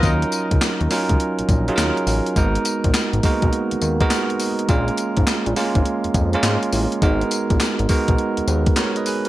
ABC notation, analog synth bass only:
X:1
M:4/4
L:1/16
Q:"Swing 16ths" 1/4=103
K:Ebm
V:1 name="Analog synth bass" clef=bass
E,,2 z D,, z E,, z D,, z B,,, B,,,2 E,, z =A,,, z | A,,,2 z B,,, z A,,, z C,, z E,, E,,2 z4 | B,,,2 z A,,, z B,,, z A,,, z F,, F,,2 A,, z =A,,, z | A,,,2 z B,,, z A,,, z C,, z E,, E,,2 z4 |]